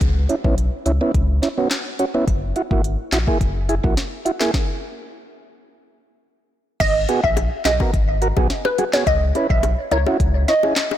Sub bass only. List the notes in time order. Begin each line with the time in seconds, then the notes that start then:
0.01 C#2
0.45 B1
0.86 C#2
1.14 C#2
2.28 F#1
2.71 G#1
3.12 A#1
3.41 F#1
3.84 A#1
6.80 G#1
7.24 A#1
7.65 B1
7.94 G#1
8.37 B1
9.07 C#2
9.50 B1
9.92 C#2
10.20 C#2